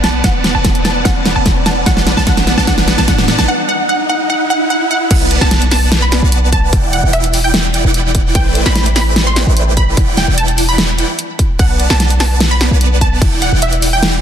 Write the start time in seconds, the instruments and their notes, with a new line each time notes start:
Already playing: 808-style bass B1, supersaw synth B3 B4 D5 F#5 A5, riser
0.04 synth pluck A5, snare, closed hi-hat
0.24 808-style bass E1, supersaw synth B3 B4 D5 F#5 A5, synth pluck F#5, kick, snare, closed hi-hat
0.44 snare, closed hi-hat
0.55 808-style bass E1, supersaw synth B3 B4 D5 F#5 A5, synth pluck A5
0.65 kick, snare, closed hi-hat
0.75 closed hi-hat
0.85 synth pluck A5, snare, closed hi-hat
1.05 808-style bass E1, supersaw synth B3 B4 D5 F#5 A5, synth pluck F#5, kick, snare, closed hi-hat
1.26 snare, closed hi-hat
1.36 808-style bass E1, supersaw synth B3 B4 D5 F#5 A5, synth pluck A5
1.46 kick, snare, closed hi-hat
1.66 synth pluck A5, snare, closed hi-hat
1.86 808-style bass A1, supersaw synth B3 B4 D5 F#5 A5, synth pluck F#5, kick, snare, closed hi-hat
1.97 snare
2.07 snare, closed hi-hat
2.17 808-style bass A1, supersaw synth B3 B4 D5 F#5 A5, synth pluck A5, snare
2.27 808-style bass A1, supersaw synth B3 B4 D5 F#5 A5, synth pluck F#5, kick, snare, closed hi-hat
2.37 snare, closed hi-hat
2.47 snare, closed hi-hat
2.57 808-style bass A1, supersaw synth B3 B4 D5 F#5 A5, synth pluck A5, snare
2.67 808-style bass A1, supersaw synth B3 B4 D5 F#5, synth pluck F#5, kick, snare, closed hi-hat
2.78 snare
2.88 snare, closed hi-hat
2.98 808-style bass A1, supersaw synth B3 B4 D5 F#5 A5, synth pluck A5, snare
3.08 808-style bass A2, supersaw synth B3 D5 A5, synth pluck F#5, kick, snare, closed hi-hat
3.18 snare
3.28 snare, closed hi-hat
3.39 808-style bass A1, supersaw synth B3 B4 D5 F#5 A5, synth pluck A5, snare
3.48 synth pluck F#5
3.69 synth pluck F#5
3.89 synth pluck F#5
4.09 synth pluck F#5
4.30 synth pluck F#5
4.50 synth pluck F#5
4.70 synth pluck F#5
4.91 synth pluck F#5
5.10 808-style bass B1, supersaw synth B3 B4 D5 F#5 A5, synth pluck F#5, kick, closed hi-hat, crash, impact
5.31 closed hi-hat
5.41 808-style bass B1, supersaw synth B3 B4 F#5, synth pluck A5, snare
5.51 snare, closed hi-hat
5.62 closed hi-hat
5.71 synth pluck A5, snare, open hi-hat
5.92 snare, closed hi-hat
6.02 synth pluck B5
6.12 snare, closed hi-hat
6.22 808-style bass B1, supersaw synth B3 B4 D5 F#5 A5
6.32 closed hi-hat
6.52 synth pluck A5, kick, closed hi-hat
6.73 808-style bass E1, supersaw synth E3, kick, closed hi-hat
6.93 synth pluck F#5, closed hi-hat
7.03 808-style bass E1, supersaw synth E3 E4 D5 F#5 G5
7.13 synth pluck E5, closed hi-hat
7.24 closed hi-hat
7.34 open hi-hat
7.44 synth pluck G5
7.54 snare, closed hi-hat
7.74 closed hi-hat
7.85 808-style bass E1, supersaw synth E3 E4 D5 F#5 G5
7.94 closed hi-hat
8.15 kick, closed hi-hat
8.35 808-style bass A1, supersaw synth A3 B4 C5, synth pluck G5, kick, closed hi-hat
8.55 closed hi-hat
8.66 808-style bass A1, supersaw synth A3 E4 D5 G5, synth pluck B5, snare
8.76 snare, closed hi-hat
8.86 closed hi-hat
8.96 synth pluck B5, snare, open hi-hat
9.16 snare, closed hi-hat
9.27 synth pluck C6
9.36 snare, closed hi-hat
9.47 808-style bass A1, supersaw synth A3 E4 B4 C5 D5 G5
9.57 closed hi-hat
9.77 synth pluck B5, kick, closed hi-hat
9.97 808-style bass E1, supersaw synth E3 E4 D5 F#5 G5, kick, closed hi-hat
10.17 synth pluck G5, snare, closed hi-hat
10.28 808-style bass E1, supersaw synth E3 E4 D5 F#5 G5
10.38 synth pluck A5, closed hi-hat
10.48 closed hi-hat
10.58 open hi-hat
10.69 synth pluck B5
10.78 snare, closed hi-hat
10.98 closed hi-hat
11.19 closed hi-hat
11.39 kick, closed hi-hat
11.59 808-style bass B1, supersaw synth B3 B4 D5 F#5 A5, synth pluck F#5, kick, closed hi-hat, crash
11.80 closed hi-hat
11.90 808-style bass B1, supersaw synth B3 B4 D5 F#5 A5, synth pluck A5, snare
12.00 snare, closed hi-hat
12.10 closed hi-hat
12.20 synth pluck A5, snare, open hi-hat
12.40 snare, closed hi-hat, crash
12.51 synth pluck B5
12.61 snare, closed hi-hat
12.71 808-style bass B1, supersaw synth B3 B4 D5 F#5 A5
12.81 closed hi-hat
13.01 synth pluck A5, kick, closed hi-hat
13.21 808-style bass E1, supersaw synth E3 E4 D5 F#5 G5, kick, closed hi-hat, crash
13.42 synth pluck F#5, closed hi-hat
13.52 808-style bass E1, supersaw synth E3 E4 D5 F#5 G5
13.62 synth pluck E5, closed hi-hat
13.73 closed hi-hat
13.82 open hi-hat
13.93 synth pluck G5
14.03 snare, closed hi-hat, crash